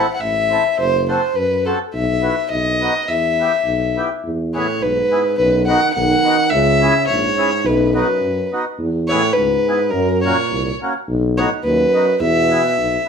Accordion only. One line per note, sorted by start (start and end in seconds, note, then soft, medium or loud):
0.51 0.64 C4 soft
0.51 0.64 E4 soft
0.51 0.65 A4 soft
1.08 1.21 C4 medium
1.08 1.21 F#4 medium
1.08 1.22 A4 medium
1.66 1.79 C4 soft
1.66 1.79 F#4 soft
1.66 1.79 A4 medium
2.22 2.35 B3 medium
2.22 2.35 E4 medium
2.22 2.36 F#4 medium
2.81 2.94 B3 medium
2.81 2.94 D#4 medium
2.81 2.94 F#4 medium
3.40 3.52 B3 medium
3.40 3.52 E4 medium
3.40 3.53 G4 medium
3.97 4.09 B3 medium
3.97 4.09 E4 medium
3.97 4.10 G4 medium
4.54 4.66 B3 medium
4.54 4.67 E4 medium
4.54 4.67 G#4 medium
5.11 5.23 B3 medium
5.11 5.24 E4 soft
5.11 5.24 G#4 medium
5.67 5.80 B3 medium
5.67 5.81 D#4 medium
5.67 5.81 F#4 medium
6.24 6.36 B3 medium
6.24 6.37 D#4 soft
6.24 6.38 F#4 medium
6.81 6.93 C#4 medium
6.81 6.94 E4 medium
6.81 6.94 G#4 medium
7.37 7.50 C#4 medium
7.37 7.51 E4 medium
7.37 7.51 G#4 medium
7.94 8.07 B3 medium
7.94 8.07 D#4 medium
7.94 8.07 F#4 medium
8.52 8.65 B3 soft
8.52 8.65 D#4 medium
8.52 8.65 F#4 medium
9.09 9.22 B3 medium
9.09 9.22 E4 medium
9.09 9.22 G#4 medium
9.67 9.79 B3 medium
9.67 9.80 E4 medium
9.67 9.80 G#4 medium
10.25 10.36 A#3 medium
10.25 10.37 C#4 medium
10.25 10.37 F#4 medium
10.82 10.93 A#3 medium
10.82 10.93 C#4 soft
10.82 10.94 F#4 medium
11.38 11.50 B3 medium
11.38 11.50 D#4 medium
11.38 11.50 F#4 medium
11.94 12.06 B3 soft
11.94 12.06 D#4 soft
11.94 12.06 F#4 medium
12.50 12.62 B3 medium
12.50 12.63 E4 medium
12.50 12.63 G#4 medium